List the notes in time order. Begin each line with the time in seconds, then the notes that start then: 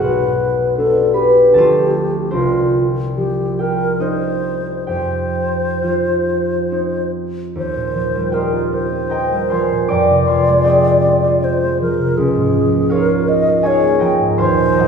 Already playing: F#3 B3 F#5
0.00 B1 F#4 B4
0.77 B3 D4 A4
1.14 G4 B4 B5
1.54 D2 F3 A3 C4 A4 A5
1.58 F4
2.31 C2 C4 F4 C5
3.17 F3 G4
3.59 G4 A#4 G5
4.00 C4 D#4 C5 D#5
4.87 F2 G4 C5 G5
5.82 F3 F4 F5
6.71 C4 D#4
7.55 D#2 C5
7.76 A#2
7.95 F3
8.15 G3
8.32 C4 G4 A#4 C5 D#5 G5
8.53 F4
8.71 C4 C5
8.92 F4
9.09 C4 A#4 D#5 G5 A#5
9.32 G3
9.50 F3 C5 F5 G#5 C6
9.72 A#2
9.88 F2 D5 G5 A#5 D6
10.10 C3
10.27 F3 C5 F5 G#5 C6
10.48 G#3
10.64 C4 G4 C5 D#5 G5
10.86 F4
11.05 C4
11.23 F4
11.43 C4 C5
11.62 G#3
11.82 F3 A#4
11.99 C3
12.17 C#2 G#4
12.35 G#2
12.53 F3
12.72 A#3
12.90 D#4 F4 A#4 C#5 F5
13.09 F4
13.28 D#4 D#5
13.47 F4
13.63 D#4 G#4 C#5 F5 G#5
13.67 C#5
13.83 A#3
13.99 F3 A#4 D#5 G5 A#5
14.20 G#2
14.38 D#2 C5 F5 G#5 C6
14.60 A#2
14.76 F#3 A#4 D#5 F#5 A#5